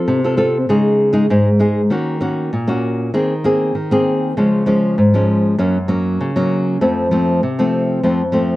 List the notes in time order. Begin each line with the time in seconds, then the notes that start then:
Already playing: C4 F4 A4
0.08 C3
0.24 C4 F4 A4
0.37 C4 F4 A4
0.69 C#3 G#3 D#4 G#4
1.13 G#3 D#4 G#4
1.30 G#2 G#3 D#4 G#4
1.59 G#3 D#4 G#4
1.90 D#3 A#3 C#4 F#4
2.21 A#3 C#4 F#4
2.53 A#2
2.68 A#3 C#4 F#4
3.14 D#3 A#3 C4 G#4
3.44 A#3 C4 G#4
3.75 D#3
3.91 A#3 C4 G#4
4.37 C#3 F3 G#3 C#4
4.66 F3 G#3 C#4
4.98 G#2
5.14 F3 G#3 C#4
5.58 F#2 F#3 A#3 C#4
5.88 F#3 A#3 C#4
6.21 C#3
6.36 F#3 A#3 C#4
6.81 F2 F3 A3 C4
7.11 F3 A3 C4
7.43 C3
7.59 F3 A3 C4
8.03 F2 F3 A3 C4
8.32 F3 A3 C4